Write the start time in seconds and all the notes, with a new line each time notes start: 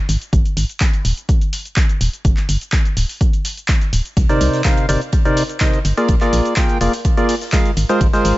0.09 G#1, open hi-hat, shaker
0.21 closed hi-hat, shaker
0.33 G#1, kick, closed hi-hat, shaker
0.46 closed hi-hat, shaker
0.57 G#1, open hi-hat, shaker
0.69 closed hi-hat, shaker
0.80 kick, clap, closed hi-hat, shaker
0.93 closed hi-hat, shaker
1.05 D#1, open hi-hat, shaker
1.17 closed hi-hat, shaker
1.29 kick, closed hi-hat, shaker
1.41 closed hi-hat, shaker
1.53 open hi-hat, shaker
1.65 closed hi-hat, shaker
1.76 kick, clap, closed hi-hat, shaker
1.89 closed hi-hat, shaker
2.01 D#1, open hi-hat, shaker
2.13 closed hi-hat, shaker
2.25 G1, kick, closed hi-hat, shaker
2.37 clap, closed hi-hat, shaker
2.49 G1, open hi-hat, shaker
2.61 closed hi-hat, shaker
2.72 kick, clap, closed hi-hat, shaker
2.85 closed hi-hat, shaker
2.97 D1, open hi-hat, shaker
3.09 open hi-hat, shaker
3.21 kick, closed hi-hat, shaker
3.33 closed hi-hat, shaker
3.45 open hi-hat, shaker
3.57 closed hi-hat, shaker
3.68 kick, clap, closed hi-hat, shaker
3.81 closed hi-hat, shaker
3.93 D1, open hi-hat, shaker
4.05 closed hi-hat, shaker
4.17 C2, kick, closed hi-hat, ride, shaker
4.29 C3 D#4 A#4 C5 D5, snare, closed hi-hat, shaker
4.41 C2, open hi-hat, ride, shaker
4.53 snare, closed hi-hat, shaker
4.64 C3 D#4 A#4 C5 F5, kick, snare, clap, closed hi-hat, ride, shaker
4.77 closed hi-hat, ride, shaker
4.89 G1 C3 D#4 A#4 C5 D5, open hi-hat, ride, shaker
5.01 closed hi-hat, shaker
5.12 kick, closed hi-hat, ride, shaker
5.25 C3 D#4 A#4 C5 D5, closed hi-hat, shaker
5.37 snare, open hi-hat, ride, shaker
5.49 closed hi-hat, shaker
5.60 C3 D#4 A#4 C5 D#5, kick, snare, clap, closed hi-hat, ride, shaker
5.73 closed hi-hat, shaker
5.85 G1, open hi-hat, ride, shaker
5.97 A#3 F4 G#4 A#4 D5, closed hi-hat, ride, shaker
6.08 A#1, kick, closed hi-hat, ride, shaker
6.21 A#3 F4 G#4 A#4 D5, clap, closed hi-hat, shaker
6.33 A#1, open hi-hat, ride, shaker
6.45 closed hi-hat, shaker
6.56 A#3 F4 G#4 A#4 G5, kick, snare, clap, closed hi-hat, ride, shaker
6.69 closed hi-hat, shaker
6.81 F1 A#3 F4 G#4 A#4 D5, open hi-hat, ride, shaker
6.93 open hi-hat, ride, shaker
7.05 kick, closed hi-hat, ride, shaker
7.17 A#3 F4 G#4 A#4 D5, closed hi-hat, shaker
7.29 snare, open hi-hat, shaker
7.41 snare, closed hi-hat, shaker
7.52 G#3 F4 G#4 A#4 F5, kick, snare, clap, closed hi-hat, ride, shaker
7.65 closed hi-hat, shaker
7.77 G#1, open hi-hat, ride, shaker
7.89 G#3 F4 G#4 A#4 C5, closed hi-hat, ride, shaker
8.01 G#1, kick, closed hi-hat, ride, shaker
8.13 G#3 F4 G#4 A#4 C5, snare, closed hi-hat, shaker
8.25 G#1, open hi-hat, ride, shaker